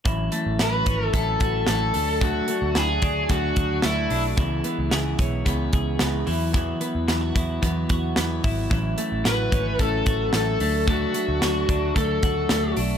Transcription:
<<
  \new Staff \with { instrumentName = "Lead electric guitar" } { \time 4/4 \key a \major \tempo 4 = 111 r4 b'4 a'4 a'4 | fis'4 gis'4 fis'4 e'8. r16 | r1 | r1 |
r4 b'4 a'4 a'4 | fis'2 a'4. r8 | }
  \new Staff \with { instrumentName = "Clean electric guitar" } { \time 4/4 \key a \major e8 a8 e'16 fis'16 cis'8 a8 fis'8 a8 a8 | a8 a8 e'16 fis'16 d'8 a8 fis'8 a8 d'8 | e8 b8 gis'8 cis'8 b8 gis'8 b8 e8 | e8 b8 e'16 fis'16 e'8 b8 fis'8 b8 e'8 |
e8 a8 fis'8 cis'8 a8 fis'8 a8 a8 | a8 a8 fis'8 d'8 a8 fis'8 a8 d'8 | }
  \new Staff \with { instrumentName = "Clean electric guitar" } { \time 4/4 \key a \major <a, fis cis' e'>8 <fis cis' e'>8 <a, fis cis' e'>8 <fis cis' e'>8 <a, fis cis' e'>4 <a, fis cis' e'>8 <fis a d'>8 | <d fis a d'>8 <fis a d'>8 <d fis a d'>8 <fis a d'>8 <d fis a d'>4 <d fis a d'>8 <fis a d'>8 | <cis gis b e'>8 <gis b e'>8 <cis gis b e'>8 <gis b e'>8 <cis gis b e'>4 <cis gis b e'>8 <fis b e'>8 | <e fis b e'>8 <fis b e'>8 <e fis b e'>8 <fis b e'>8 <e fis b e'>4 <e fis b e'>8 <fis b e'>8 |
<a, fis cis' e'>8 <fis cis' e'>8 <a, fis cis' e'>8 <fis cis' e'>8 <a, fis cis' e'>4 <a, fis cis' e'>8 <fis a d'>8 | <d fis a d'>8 <fis a d'>8 <d fis a d'>8 <fis a d'>8 <d fis a d'>4 <d fis a d'>8 <fis a d'>8 | }
  \new Staff \with { instrumentName = "Picked electric bass" } { \clef bass \time 4/4 \key a \major a,,8 r16 a,,16 a,,8 gis,,8 a,,8 a,,8 a,,8 d,8~ | d,8 r16 d,16 d,8 d,8 d,8 d,8 d,8 b,,8 | cis,8 r16 cis,16 cis,8 b,,8 cis,8 cis,8 cis,8 e,8~ | e,8 r16 e,16 e,8 e,8 e,8 e,8 e,8 gis,,8 |
a,,8 r16 a,,16 a,,8 gis,,8 a,,8 a,,8 a,,8 d,8~ | d,8 r16 d,16 d,8 d,8 d,8 d,8 d,8 b,,8 | }
  \new DrumStaff \with { instrumentName = "Drums" } \drummode { \time 4/4 <hh bd>8 hh8 <hh sn>8 <hh bd>8 <hh bd>8 <hh bd>8 <hh sn>8 hho8 | <hh bd>8 hh8 <hh sn>8 <hh bd>8 <hh bd>8 <hh bd>8 <hh sn>8 hho8 | <hh bd>8 hh8 <hh sn>8 <hh bd>8 <hh bd>8 <hh bd>8 <hh sn>8 hho8 | <hh bd>8 hh8 <hh sn>8 <hh bd>8 <hh bd>8 <hh bd>8 <hh sn>8 <hho bd>8 |
<hh bd>8 hh8 <hh sn>8 <hh bd>8 <hh bd>8 <hh bd>8 <hh sn>8 hho8 | <hh bd>8 hh8 <hh sn>8 <hh bd>8 <hh bd>8 <hh bd>8 <hh sn>8 hho8 | }
>>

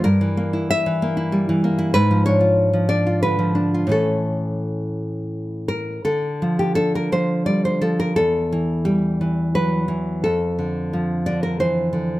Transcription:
\new Staff \with { instrumentName = "Nylon-string guitar" } { \time 3/4 \key d \minor \tempo 4 = 87 << { bes'4 e''4. r8 | b'8 cis''4 d''8 b'4 | a'2~ a'8 bes'8 | a'8. g'16 a'16 bes'16 c''8 d''16 c''16 a'16 bes'16 |
a'4 g'4 b'4 | a'4. d''16 bes'16 c''4 | } \\ { g,16 e16 bes16 e'8 e16 bes16 e'16 g16 e16 bes16 e'16 | gis,16 eis16 d'16 eis'8 eis16 d'16 eis'16 d16 eis16 d'16 eis'16 | <a, e cis'>2. | d8 f8 d'8 f8 g8 f8 |
e,8 e8 g8 e8 fis8 e8 | f,8 d8 f8 d8 e8 d8 | } >> }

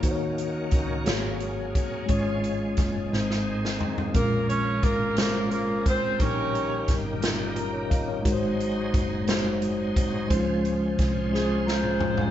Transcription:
<<
  \new Staff \with { instrumentName = "Saxophone section" } { \time 6/8 \key des \major \tempo 4. = 58 << { r2. | r2. | bes'8 des''8 bes'4 bes'8 c''8 | des''4 r2 |
r2. | r4. aes'8 c''4 | } \\ { r2. | r2. | <des' f'>4 <des' f'>4. r8 | g'4. r4. |
r2. | r2 <f' aes'>4 | } >> }
  \new Staff \with { instrumentName = "Tine electric piano" } { \time 6/8 \key des \major << { r2. | r2. | r2. | r2 <bes' bes''>16 des''16 <ees'' f''>16 des''16~ |
des''16 r2 r8. | r2 bes''8 aes''16 f''16 | } \\ { <bes ees' ges' c'' des''>4~ <bes ees' ges' c'' des''>16 r16 <bes ges' aes' des''>4~ <bes ges' aes' des''>16 r16 | <aes des' f' des''>4~ <aes des' f' des''>16 r16 <aes c' ees' c''>4~ <aes c' ees' c''>16 r16 | <aes c' des' f' bes'>4~ <aes c' des' f' bes'>16 r16 <aes des' f' c''>4~ <aes des' f' c''>16 r16 | <g des' ees' bes'>4~ <g des' ees' bes'>16 r16 <g des' ees' f'>4~ <g des' ees' f'>16 r16 |
<aes ees' ges' bes' c''>4~ <aes ees' ges' bes' c''>16 r16 <aes ees' ges' c''>4~ <aes ees' ges' c''>16 r16 | <aes des' ees' f' c''>4~ <aes des' ees' f' c''>16 r16 <aes des' f' c''>4~ <aes des' f' c''>16 r16 | } >> }
  \new Staff \with { instrumentName = "Tine electric piano" } { \clef bass \time 6/8 \key des \major ees4. aes,4. | aes,4. aes,4. | bes,4. r4. | bes,4. r4. |
aes,4. r4. | f4. r4. | }
  \new Staff \with { instrumentName = "Tenor saxophone" } { \time 6/8 \key des \major r2. | r2. | bes8 des'8 bes8 bes8 bes8 c'8 | des'4 r2 |
r2. | r2. | }
  \new Staff \with { instrumentName = "Tonewheel organ" } { \time 6/8 \key des \major << { ges'4. aes'4. | aes'2.~ | aes'2. | g'2. |
aes'2.~ | aes'2. | } \\ { des'2.~ | des'4. c'4. | des2.~ | des2. |
ees'2. | des'2. | } >> }
  \new Staff \with { instrumentName = "Tonewheel organ" } { \clef bass \time 6/8 \key des \major << { bes2. | aes2. | bes2.~ | bes2. |
c''2.~ | c''2. | } \\ { ees4. ges4. | f4. ees4. | f2. | ees2. |
ges2. | f2. | } >> }
  \new Staff \with { instrumentName = "Fingered electric bass" } { \clef bass \time 6/8 \key des \major ees,4 des,8 aes,,4 r8 | aes,,4 ges,,8 aes,,4 r8 | bes,,4 aes,,2 | bes,,4 g,,2 |
aes,,4 ges,,2 | des,4 c,2 | }
  \new DrumStaff \with { instrumentName = "Drums" } \drummode { \time 6/8 <hh bd>8 hh8 <hh bd>8 <hh sn>8 hh8 <hh bd>8 | <hh bd>8 hh8 <hh bd sn>8 sn16 sn8 sn16 tomfh16 tomfh16 | <hh bd>8 hh8 <hh bd>8 <hh sn>8 hh8 <hh bd>8 | <hh bd>8 hh8 <hh bd sn>8 <hh sn>8 hh8 <hh bd>8 |
<hh bd>8 hh8 <hh bd>8 <hh sn>8 hh8 <hh bd>8 | <hh bd>8 hh8 <hh bd sn>8 sn8 sn16 toml16 tomfh16 tomfh16 | }
>>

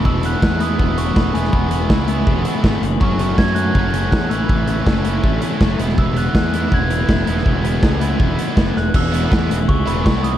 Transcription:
<<
  \new Staff \with { instrumentName = "Glockenspiel" } { \time 4/4 \key e \mixolydian \tempo 4 = 162 e'''8 fis'''8 fis'''8 dis'''4 cis'''8 b''8 gis''8 | b''2. r4 | cis'''8 cis'''8 gis'''8 fis'''4. fis'''8 e'''8~ | e'''8 r2. r8 |
e'''8 fis'''8 fis'''4 gis'''2~ | gis'''2. r8 fis'''8 | e'''2 cis'''8 b''8 cis'''8 dis'''8 | }
  \new Staff \with { instrumentName = "Overdriven electric guitar" } { \time 4/4 \key e \mixolydian e8 b8 gis'8 e'8 b8 e'8 b8 e8 | e8 b8 gis'8 e'8 b8 e'8 b8 e8 | fis8 a8 a'8 cis'8 a8 cis'8 a8 e8 | e8 a8 a'8 cis'8 a8 cis'8 a8 e8 |
e8 b8 gis'8 e'8 b8 e'8 b8 e8 | e8 b8 gis'8 e'8 b8 e'8 b8 e8 | <e b e' gis'>8 <b e' gis'>8 <e b e' gis'>8 <b e' gis'>8 <e b e' gis'>8 <b e' gis'>8 <e b e' gis'>4 | }
  \new Staff \with { instrumentName = "Distorted electric guitar" } { \time 4/4 \key e \mixolydian <e gis b e'>4. <e gis b e'>2 <e gis b e'>8~ | <e gis b e'>4. <e gis b e'>2 r8 | <fis a cis' fis'>2 <fis a cis' fis'>4. <a, e a cis' e'>8~ | <a, e a cis' e'>4. <a, e a cis' e'>2 <e gis b e'>8~ |
<e gis b e'>4. <e gis b e'>2 <e gis b e'>8~ | <e gis b e'>4. <e gis b e'>2 r8 | r8 <e gis b e'>8 <e gis b e'>8 r4 <e gis b e'>8 <e gis b e'>8 r8 | }
  \new Staff \with { instrumentName = "Fingered electric bass" } { \clef bass \time 4/4 \key e \mixolydian e,,4 e,4 e,,4 e,,8 e,,8 | e,,4 cis,4 e,,8 r8 gis,,8 fis,,8 | fis,,4 fis,4 fis,,4 e,8 a,,8 | a,,4 fis,,4 a,,8 r8 fis,,8 e,,8~ |
e,,4 e,4 e,,4 e,,8 e,,8 | e,,4 cis,4 e,,8 r8 fis,,8 e,,8 | e,,4 e,8 e,,8 cis,8 e,,8 bis,,4 | }
  \new DrumStaff \with { instrumentName = "Drums" } \drummode { \time 4/4 bd8 hh8 <bd sn>8 hh8 bd8 hh8 <bd sn>8 <hh sn>16 sn16 | bd8 hh8 <bd sn>8 hh8 bd8 hh8 <bd sn>8 <hh sn>8 | bd8 hh8 <bd sn>8 hh8 bd8 hh8 <bd sn>8 <hh sn>8 | bd8 hh8 <bd sn>8 hh8 bd8 hh8 <bd sn>8 <hh sn>16 sn16 |
bd8 hh8 <bd sn>8 hh8 bd8 hh8 <bd sn>8 hh16 sn16 | bd8 hh8 <bd sn>8 hh8 bd8 hh8 <bd sn>8 sn8 | <cymc bd>8 hh8 <bd sn>8 hh8 bd8 hh8 <bd sn>8 hh8 | }
>>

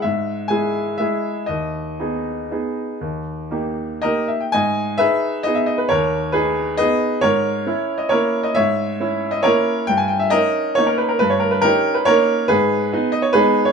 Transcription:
\new Staff \with { instrumentName = "Grand piano" } { \time 3/4 \key gis \minor \tempo 4 = 134 << { e''4 gis''4 e''4 | dis''2.~ | dis''2 <ais' dis''>8 e''16 g''16 | <dis'' gis''>4 <b' e''>4 dis''16 e''16 dis''16 b'16 |
<ais' cis''>4 <gis' b'>4 <b' dis''>4 | <ais' cis''>4.~ <ais' cis''>16 dis''16 <ais' cis''>8. dis''16 | <cis'' e''>4.~ <cis'' e''>16 dis''16 <ais' cis''>4 | g''16 gis''16 g''16 e''16 <ais' dis''>4 cis''16 ais'16 b'16 ais'16 |
b'16 cis''16 ais'16 b'16 <g' ais'>8. b'16 <ais' cis''>4 | <gis' b'>4. dis''16 cis''16 <gis' b'>8. cis''16 | } \\ { gis,4 <gis e' gis'>4 <gis e' gis'>4 | dis,4 <b dis' gis'>4 <b dis' gis'>4 | dis,4 <ais dis' g'>4 <ais dis' g'>4 | gis,4 <dis' gis'>4 <b dis' gis'>4 |
dis,4 dis'4 <b dis' gis'>4 | gis,4 <cis' e'>4 <ais cis' e'>4 | gis,4 <cis' e'>4 <ais cis' e'>4 | g,4 <cis' dis'>4 <ais cis' dis'>4 |
g,4 <cis' dis'>4 <ais cis' dis'>4 | gis,4 <b dis'>4 <gis b dis'>4 | } >> }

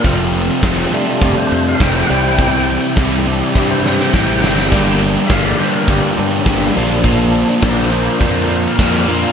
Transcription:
<<
  \new Staff \with { instrumentName = "Tonewheel organ" } { \time 4/4 \key c \dorian \tempo 4 = 103 r4. d'16 f'16 g'16 c''8 f''16 g''8 <fis'' g''>8~ | <fis'' g''>8 r4 d'16 g'16 g'16 c''8 g''16 g''8 <fis'' g''>8~ | <fis'' g''>8 r8 <e'' f''>16 d''16 c''16 bes'16 g'16 f'16 d'16 cis'16 c'16 bes16 g8 | bes8 r8 d''16 <b' c''>4. bes'16 bes'8 f'8 | }
  \new Staff \with { instrumentName = "Tonewheel organ" } { \time 4/4 \key c \dorian r4. <g a>4. r8 <g c' e'>8 | r2 <g c' e'>8 r4. | <g bes d'>8 r2. <f bes d'>8~ | <f bes d'>4. <f bes d'>8 r2 | }
  \new Staff \with { instrumentName = "Overdriven electric guitar" } { \clef bass \time 4/4 \key c \dorian <f, c f a c' f'>4 <f, c f a c' f'>8 <f, c f a c' f'>8 <f, c f a c' f'>4 <f, c f a c' f'>8 <c e g c' g'>8 | <c e g c' g'>4 <c e g c' g'>8 <c e g c' g'>8 <c e g c' g'>4 <c e g c' g'>8 <c e g c' g'>8 | <g, d g bes d' g'>4 <g, d g bes d' g'>8 <g, d g bes d' g'>8 <g, d g bes d' g'>4 <g, d g bes d' g'>8 <bes, d bes d' f'>8 | <bes, d bes d' f'>4 <bes, d bes d' f'>8 <bes, d bes d' f'>8 <bes, d bes d' f'>4 <bes, d bes d' f'>8 <bes, d bes d' f'>8 | }
  \new Staff \with { instrumentName = "Distorted electric guitar" } { \clef bass \time 4/4 \key c \dorian <f, c f a c'>4 <f, c f a c'>8 <f, c f a c'>8 <f, c f a c'>4 <f, c f a c'>8 <c g c' e'>8 | <c g c' e'>4 <c g c' e'>8 <c g c' e'>8 <c g c' e'>4 <c g c' e'>8 <c g c' e'>8 | <g, d g bes d'>4 <g, d g bes d'>8 <g, d g bes d'>8 <g, d g bes d'>4 <g, d g bes d'>8 <bes, f bes d'>8 | <bes, f bes d'>4 <bes, f bes d'>8 <bes, f bes d'>8 <bes, f bes d'>4 <bes, f bes d'>8 <bes, f bes d'>8 | }
  \new Staff \with { instrumentName = "Overdriven electric guitar" } { \clef bass \time 4/4 \key c \dorian r1 | r1 | <g, d g>4 <g, d g>8 <g, d g>8 <g, d g>4 <g, d g>8 <bes, f bes>8 | <bes, f bes>4 <bes, f bes>8 <bes, f bes>8 <bes, f bes>4 <bes, f bes>8 <bes, f bes>8 | }
  \new Staff \with { instrumentName = "Picked electric bass" } { \clef bass \time 4/4 \key c \dorian f,,4 f,,8 r8 f,,16 r16 f,8 f,,8 c,8~ | c,4 c,4 g,4 a,,8 g,,8 | g,,4 g,,8 r8 g,,16 r16 g,8 g,,8 bes,,8~ | bes,,4 bes,,4 f,4 f,4 | }
  \new DrumStaff \with { instrumentName = "Drums" } \drummode { \time 4/4 <hh bd>8 hh16 sn16 <hh bd sn>8 hh8 <hh bd>8 hh8 <hh bd sn>8 hh8 | <hh bd>8 hh8 <hh bd sn>8 hh8 <bd sn>8 sn16 sn16 <bd sn>8 sn16 sn16 | <cymc bd>8 hh16 sn16 <hh bd sn>8 hh8 <hh bd>8 hh8 <hh bd sn>8 hh8 | <hh bd>8 hh16 sn16 <hh bd sn>8 hh8 <hh bd>8 hh8 <hh bd sn>8 hh8 | }
>>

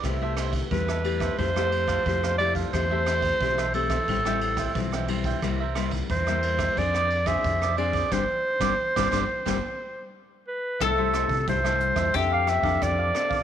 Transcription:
<<
  \new Staff \with { instrumentName = "Cavaquinho" } { \time 4/4 \key c \major \tempo 4 = 89 <e' a' c'' e''>16 <a' c'' e''>16 <e' a' c'' e''>16 r16 <e' a' c'' e''>16 <a' e''>8 <a' c'' e''>16 <e' a' c'' f''>16 <a' c'' f''>16 r16 <a' c'' f''>8 <a' c'' f''>16 <e' a' f''>16 <a' c'' f''>16 | <e' a' c'' e''>16 <a' c'' e''>16 <e' a' c'' e''>16 r16 <e' a' c'' e''>16 <a' c'' e''>8 <a' c'' e''>16 <a' c'' e'' g''>16 <c'' e'' g''>16 r16 <c'' e'' g''>8 <c'' e'' g''>16 <a' c'' e'' g''>16 <c'' e'' g''>16 | <e' bes' c'' e''>16 <bes' c'' e''>16 <e' bes' c'' e''>16 r16 <e' bes' c'' e''>16 <bes' c'' e''>8 <bes' c'' e''>16 <f' aes' c'' d''>16 <aes' c'' d''>16 r16 <aes' c'' d''>8 <aes' c'' d''>16 <f' aes' c''>16 <aes' c'' d''>16 | <g' c'' d''>16 r8 <g' c'' d''>16 r16 <g' c'' d''>16 <g' c'' d''>16 r16 <g' c'' d''>16 r4. r16 |
<e' a' c'' e''>16 <a' c'' e''>16 <e' a' c'' e''>16 r16 <e' a' c'' e''>16 <a' c'' e''>8 <a' c'' e''>16 <d' a' d'' f''>16 <a' d'' f''>16 r16 <a' d'' f''>8 <a' d'' f''>16 <d' a' d'' f''>16 <a' d'' f''>16 | }
  \new Staff \with { instrumentName = "Clarinet" } { \time 4/4 \key c \major r4 b'4 c''4. d''8 | c''4. a'2 r8 | r4 c''4 d''8. e''8. d''8 | c''2. r8 b'8 |
a'4 c''4 e''16 f''16 e''8 d''4 | }
  \new Staff \with { instrumentName = "Mandolin" } { \time 4/4 \key c \major r1 | r1 | r1 | r1 |
a'2 g'2 | }
  \new Staff \with { instrumentName = "Nylon-string guitar" } { \time 4/4 \key c \major << { <a e' g'>16 <a e' g'>8. <a e' g'>16 r16 <a e' g'>8 <a e' g'>16 <a e' g'>8. <a e' g'>8 <a e' g'>8 | <a c' g'>16 <a c' g'>8. <a c' g'>16 r16 <a c' g'>16 r16 <g c' e'>16 <g c' e'>8. <g c' e'>8 <g c' e'>8 | <g bes e'>16 r16 <g bes e'>8 r16 <g bes e'>8. <c' d' aes'>8. <c' d' aes'>8. <c' d' aes'>8 | <g c' d'>16 r8 <g c' d'>16 r16 <g c' d'>16 <g c' d'>16 r16 <g c' d'>16 r4. r16 |
<g a e'>16 <g a e'>8. <g a e'>16 <g a e'>8. <c' d' a'>8 r16 <c' d' a'>8. <c' d' a'>16 r16 | } \\ { c4 g4 f4 c4 | e4 e4 a,4 e4 | c4 g,4 f4 c4 | r1 |
c4 g,4 f4 c4 | } >> }
  \new Staff \with { instrumentName = "Fingered electric bass" } { \clef bass \time 4/4 \key c \major c,4 e,4 f,4 f,4 | e,4 b,,4 a,,4 b,,4 | c,4 e,4 f,4 f,4 | g,,16 r8 g,,16 r16 g,,16 g,,16 r16 g,,16 r4. r16 |
c,8. c16 c,8. e,16 f,8. f,16 f,8 r8 | }
  \new DrumStaff \with { instrumentName = "Drums" } \drummode { \time 4/4 <bd cymr ss>8 <cymr ss>16 <bd cymr>16 <bd cymr>16 ss16 cymr16 <bd cymr ss>16 <bd cymr>16 ss16 cymr16 <bd cymr ss>16 <bd cymr>16 ss16 cymr16 <bd cymr>16 | <bd cymr ss>8 <cymr ss>16 <bd cymr>16 <bd cymr>16 ss16 cymr16 <bd cymr ss>16 <bd cymr>16 ss16 cymr16 <bd cymr ss>16 <bd cymr>16 ss16 cymr16 <bd cymr>16 | <bd cymr ss>8 <cymr ss>16 <bd cymr>16 <bd cymr>16 ss16 cymr16 <bd cymr ss>16 <bd cymr>16 ss16 cymr16 <bd cymr ss>16 <bd cymr>16 ss16 cymr16 <bd cymr>16 | <bd sn>8. <bd sn>16 r16 <bd sn>16 <bd sn>8 <bd sn>4 r4 |
<hh bd ss>8 <hh ss>16 <hh bd>16 <hh bd>16 ss16 hh16 <hh bd ss>16 <hh bd>8 <hh ss>16 bd16 <hh bd ss>8 <hh ss>16 bd16 | }
>>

